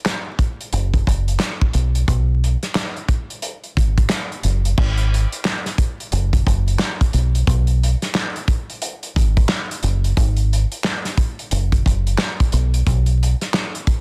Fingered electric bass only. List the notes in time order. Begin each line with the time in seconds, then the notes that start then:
0.73 F#1
1.07 F#1
1.74 B1
2.08 B1
3.77 G#1
4.44 F#1
4.78 G#1
6.13 F#1
6.47 F#1
7.14 B1
7.47 B1
9.16 G#1
9.84 F#1
10.17 G#1
11.52 F#1
11.86 F#1
12.53 B1
12.87 B1